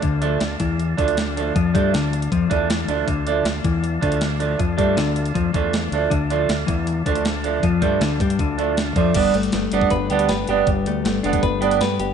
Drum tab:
CC |----------------|----------------|----------------|----------------|
HH |x-x-x-x-x-xxx-x-|x-x-x-xxx-x-x-x-|x-x-x-x-x-xxx-x-|x-x-x-xxx-x-x-x-|
SD |----o-------oo--|----o-------oo--|----o-------o---|----o-------o---|
BD |o-----o---o-----|o-o-----o-o-----|o-----o---o-----|o-o-----o-o-----|

CC |----------------|----------------|x---------------|----------------|
HH |x-x-x-x-x-xxx-x-|x-x-x-xxx-x-x-x-|x-xxx-x-x-xxx-x-|x-x-x-xxx-xxx-x-|
SD |----o-------o---|----o-------o---|----o-------o---|----o-------o---|
BD |o-----o---o-----|o-o---o-o-----o-|o------oo-------|o------oo-------|